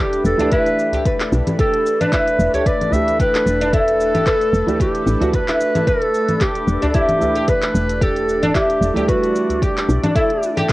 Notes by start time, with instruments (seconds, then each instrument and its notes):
Already playing: fm bass E1, felt piano E3 A3 D4 G4, analog synth pad A3 D4 A4 B4
0.00 clarinet G4, oud G4
0.13 closed hi-hat, shaker
0.24 fm bass E1, clarinet A4, shaker
0.38 felt piano E3 A3 D4 G4, oud D4, closed hi-hat, udu, shaker
0.52 oud E4, clarinet B4, kick, closed hi-hat, shaker
0.66 closed hi-hat, shaker
0.79 shaker
0.92 oud G4, closed hi-hat, udu, shaker
1.05 oud B4, kick, closed hi-hat, shaker
1.20 clap, closed hi-hat, shaker
1.32 fm bass B1, shaker
1.47 closed hi-hat, low conga, shaker
1.59 oud G4, clarinet A4, kick, closed hi-hat, shaker
1.74 closed hi-hat
1.86 shaker
2.01 oud D4, clarinet B4, closed hi-hat, low conga, shaker
2.12 oud E4, kick, clap, closed hi-hat, shaker
2.28 closed hi-hat, shaker
2.39 fm bass E1, shaker
2.54 oud G4, clarinet C#5, closed hi-hat, udu, shaker
2.66 oud B4, clarinet D5, kick, closed hi-hat, shaker
2.81 closed hi-hat, low conga, shaker
2.90 felt piano E3 A3 D4, clarinet E5, udu, shaker
2.95 felt piano G4
3.08 closed hi-hat, shaker
3.20 oud G4, clarinet B4, kick, closed hi-hat, shaker
3.35 clap, closed hi-hat, shaker
3.46 fm bass E1, shaker
3.61 oud D4, closed hi-hat, shaker
3.73 oud E4, clarinet A4, kick, closed hi-hat, shaker
3.88 closed hi-hat, shaker
4.00 shaker
4.15 oud G4, closed hi-hat, low conga, shaker
4.26 oud B4, kick, clap, closed hi-hat, shaker
4.41 closed hi-hat, shaker
4.53 fm bass E1, shaker
4.67 felt piano E3 A3 D4 G4, closed hi-hat, udu, shaker
4.80 oud G4, clarinet G4, kick, closed hi-hat, shaker
4.95 closed hi-hat, shaker
5.07 fm bass A1, shaker
5.21 felt piano E3 A3 D4 F#4, oud F#4, closed hi-hat, udu, shaker
5.34 oud B4, clarinet B4, kick, closed hi-hat, shaker
5.48 oud E4, clap, closed hi-hat, shaker
5.61 shaker
5.75 oud E4, closed hi-hat, low conga, shaker
5.87 clarinet A4, oud B4, kick, closed hi-hat, shaker
6.02 closed hi-hat
6.14 shaker
6.29 closed hi-hat, low conga, shaker
6.41 oud G4, clarinet G4, kick, clap, closed hi-hat, shaker
6.55 closed hi-hat, shaker
6.67 fm bass E1, shaker
6.82 oud D4, closed hi-hat, udu, shaker
6.89 clarinet A4
6.94 oud E4, clarinet G4, kick, closed hi-hat, shaker
7.09 closed hi-hat, low conga, shaker
7.19 felt piano E3 A3 D4 G4, udu, shaker
7.35 oud G4, closed hi-hat, shaker
7.48 oud B4, clarinet B4, kick, closed hi-hat, shaker
7.62 clap, closed hi-hat, shaker
7.75 fm bass E1, analog synth pad D5, shaker
7.89 closed hi-hat, shaker
8.01 oud G4, clarinet A4, kick, closed hi-hat, shaker
8.16 closed hi-hat, shaker
8.29 shaker
8.43 oud D4, closed hi-hat, low conga, shaker
8.55 oud E4, clarinet G4, kick, clap, closed hi-hat, shaker
8.70 closed hi-hat, shaker
8.81 fm bass E1, shaker
8.94 felt piano E3 G3 A3 D4, oud G4, closed hi-hat, udu, shaker
9.08 clarinet F#4, oud B4, kick, closed hi-hat, shaker
9.24 closed hi-hat, shaker
9.36 shaker
9.49 closed hi-hat, udu, shaker
9.62 oud G4, clarinet G4, kick, closed hi-hat, shaker
9.78 clap, closed hi-hat, shaker
9.89 fm bass B1, shaker
10.03 oud D4, closed hi-hat, low conga, shaker
10.15 oud E4, clarinet A4, kick, closed hi-hat, shaker
10.30 closed hi-hat
10.43 shaker
10.57 oud G4, closed hi-hat, low conga, shaker
10.69 oud B4, kick, clap, closed hi-hat, shaker